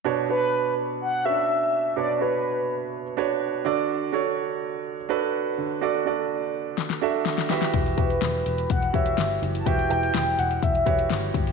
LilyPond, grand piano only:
<<
  \new Staff \with { instrumentName = "Grand piano" } { \time 4/4 \key b \minor \tempo 4 = 125 <d' fis' b' cis''>8 <d' fis' b' cis''>4. r8 <cis' d' fis' b' e''>4. | <d' fis' b' cis''>8 <d' fis' b' cis''>4. r8 <d' fis' b' cis''>4 <d' fis' a' d''>8~ | <d' fis' a' d''>8 <d' fis' a' cis''>4. r8 <d' fis' a' b'>4. | <d' fis' a' d''>8 <d' fis' a' d''>4. r8 <d' fis' a' e''>4 <fis' g' b' e''>8~ |
<fis' g' b' e''>8 <fis' g' b' e''>4. r8 <fis' g' b' cis''>4. | <fis' g' b' e''>8 <e' g' b' g''>4. r8 <fis' g' b' cis''>4. | }
  \new Staff \with { instrumentName = "Grand piano" } { \clef bass \time 4/4 \key b \minor b,4. r2 r8 | b,4. r2 d8~ | d4 r2 r8 d8~ | d4 r2 r8 e8~ |
e4 r2 r8 e8~ | e4 r2. | }
>>